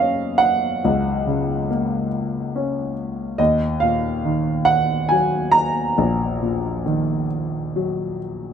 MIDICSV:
0, 0, Header, 1, 2, 480
1, 0, Start_track
1, 0, Tempo, 853485
1, 476, Time_signature, 3, 2, 24, 8
1, 2876, Tempo, 886263
1, 4727, End_track
2, 0, Start_track
2, 0, Title_t, "Grand piano"
2, 0, Program_c, 0, 0
2, 0, Control_c, 0, 64, 127
2, 0, Note_on_c, 0, 42, 47
2, 0, Note_on_c, 0, 49, 41
2, 0, Note_on_c, 0, 58, 37
2, 0, Note_on_c, 0, 61, 42
2, 0, Note_on_c, 0, 70, 62
2, 0, Note_on_c, 0, 73, 65
2, 0, Note_on_c, 0, 75, 78
2, 0, Note_on_c, 0, 77, 77
2, 206, Note_off_c, 0, 77, 0
2, 212, Note_off_c, 0, 49, 0
2, 213, Note_on_c, 0, 78, 89
2, 450, Note_off_c, 0, 42, 0
2, 452, Note_off_c, 0, 58, 0
2, 475, Note_on_c, 0, 37, 56
2, 713, Note_on_c, 0, 49, 40
2, 937, Note_off_c, 0, 61, 0
2, 959, Note_on_c, 0, 58, 47
2, 1165, Note_off_c, 0, 78, 0
2, 1437, Note_on_c, 0, 61, 47
2, 1647, Note_off_c, 0, 49, 0
2, 1885, Note_off_c, 0, 37, 0
2, 1886, Note_off_c, 0, 58, 0
2, 1894, Note_off_c, 0, 61, 0
2, 1903, Note_off_c, 0, 75, 0
2, 1903, Note_on_c, 0, 75, 70
2, 1908, Note_on_c, 0, 39, 56
2, 1914, Control_c, 0, 64, 0
2, 1915, Note_off_c, 0, 73, 0
2, 1918, Note_off_c, 0, 70, 0
2, 1999, Control_c, 0, 64, 127
2, 2138, Note_on_c, 0, 77, 71
2, 2150, Note_on_c, 0, 46, 44
2, 2152, Note_off_c, 0, 75, 0
2, 2387, Note_on_c, 0, 51, 42
2, 2615, Note_on_c, 0, 78, 89
2, 2644, Note_off_c, 0, 77, 0
2, 2861, Note_on_c, 0, 80, 74
2, 2875, Note_off_c, 0, 78, 0
2, 2876, Note_on_c, 0, 54, 49
2, 3086, Note_off_c, 0, 80, 0
2, 3090, Note_off_c, 0, 46, 0
2, 3093, Note_on_c, 0, 82, 92
2, 3324, Note_off_c, 0, 51, 0
2, 3325, Note_off_c, 0, 39, 0
2, 3345, Note_on_c, 0, 34, 60
2, 3586, Note_on_c, 0, 46, 43
2, 3802, Note_off_c, 0, 54, 0
2, 3821, Note_on_c, 0, 51, 47
2, 4034, Note_off_c, 0, 82, 0
2, 4308, Note_on_c, 0, 54, 51
2, 4533, Note_off_c, 0, 46, 0
2, 4727, Note_off_c, 0, 34, 0
2, 4727, Note_off_c, 0, 51, 0
2, 4727, Note_off_c, 0, 54, 0
2, 4727, End_track
0, 0, End_of_file